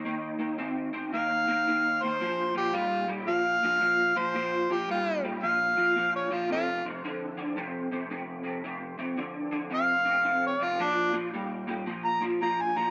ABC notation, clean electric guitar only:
X:1
M:4/4
L:1/8
Q:"Swing" 1/4=112
K:Bb
V:1 name="Clean electric guitar" clef=bass
[E,B,] [E,B,] [E,C] [E,C] [E,B,] [E,B,] [E,B,] [E,B,] | [B,,F,] [B,,F,] [B,,G,] [B,,G,] [B,,F,] [B,,F,] [B,,F,] [B,,F,] | [B,,F,] [B,,F,] [B,,G,] [B,,G,] [B,,F,] [B,,F,] [B,,F,] [B,,F,] | [F,,C,] [F,,C,] [F,,D,] [F,,D,] [F,,C,] [F,,C,] [F,,C,] [F,,C,] |
[F,,C,] [F,,C,] [F,,D,] [F,,D,] [F,,C,] [F,,C,] [F,,C,] [F,,C,] | [B,,F,] [B,,F,] [B,,G,] [B,,G,] [B,,F,] [B,,F,] [B,,F,] [B,,F,] |]